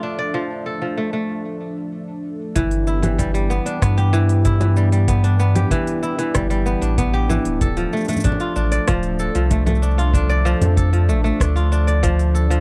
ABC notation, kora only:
X:1
M:4/4
L:1/16
Q:1/4=95
K:Gmix
V:1 name="Kora"
D d F,2 A F, A, A, z8 | E,2 E E, G, G, B, D B, G E,2 E E, G, G, | B, D B, G E,2 E E, G, G, B, D B, G E,2 | A F, A, A, D F D d F,2 A F, A, A, D F |
D d F,2 A F, A, A, D F D d F,2 A F, |]